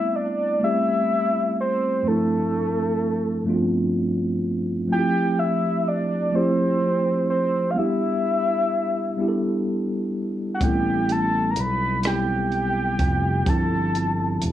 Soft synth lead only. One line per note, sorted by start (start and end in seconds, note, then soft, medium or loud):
0.00 0.17 E5 medium
0.15 0.62 D5 medium
0.64 1.54 E5 loud
1.61 2.09 C5 medium
2.08 3.96 A4 medium
4.92 5.41 G5 loud
5.39 5.89 E5 medium
5.88 6.37 D5 medium
6.35 7.29 C5 medium
7.30 7.72 C5 medium
7.71 7.79 F5 medium
7.78 9.67 E5 medium
10.54 10.65 F#5 medium
10.63 11.14 G5 medium
11.12 11.52 A5 medium
11.51 11.61 A#5 medium
11.60 12.06 B5 medium
12.07 13.50 G5 medium
13.49 14.52 A5 medium